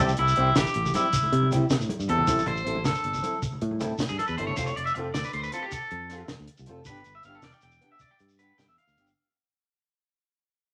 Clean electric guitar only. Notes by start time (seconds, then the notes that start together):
0.19 E4
0.57 G4
0.95 E4
2.10 A4
2.48 C5
2.86 A4
4.09 G#4
4.19 A4
4.28 B4
4.38 C5
4.47 C#5
4.57 C5
4.66 C#5
4.76 D5
4.86 E5
4.95 muted clean electric guitar stroke
5.14 D5
5.25 B4
5.34 C5
5.43 B4
5.54 A4
5.62 G4
5.72 A4
6.86 B4
7.15 E5
7.25 F5
7.35 A4
7.44 D5
7.54 G5
7.63 G5
7.92 E5
8.01 D5
8.11 G5
8.39 B4
8.58 G5
8.68 E5
8.78 F5